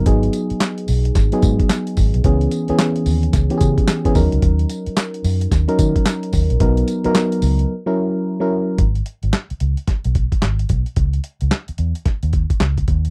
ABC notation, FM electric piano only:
X:1
M:4/4
L:1/16
Q:"Swing 16ths" 1/4=110
K:G#m
V:1 name="FM electric piano"
[F,B,DG]6 z3 [F,B,DG]4- [F,B,DG] z2 | [E,B,CG]2 z [E,B,CG]4 z2 [E,B,C=G^G]3 z [E,B,CG] [F,CDA]2- | [F,CDA]4 z4 z [F,CDA]4- [F,CDA] z2 | [F,B,DA]2 z [F,B,DA]4 z2 [F,CEA]3 z [F,CEA]2 z |
z16 | z16 |]